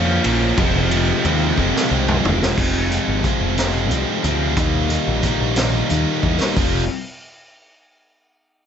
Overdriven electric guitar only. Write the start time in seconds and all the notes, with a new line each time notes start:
Already playing: A#2 F3 A#3 C#4
0.57 F2 C3 F3 G#3 C4
0.91 F3 G#3 C4
1.23 C3 F3 G#3 C4
1.57 F2 C3 F3 G#3 C4
1.90 C3 F3 G#3 C4
2.57 F2 C3 F3 G#3 C4
2.90 F3 G#3 C4
3.23 C3 F3 G#3 C4
3.57 F3 G#3 C4
3.89 C3 F3 G#3
3.93 C4
4.22 F3 G#3 C4
4.56 D#3 G3 A#3 D#4
4.88 G3 A#3 D#4
5.22 D#3 G3 A#3 D#4
5.55 G3 A#3 D#4
5.89 D#3 G3 A#3 D#4
6.22 G3 A#3 D#4
6.56 F2 C3 F3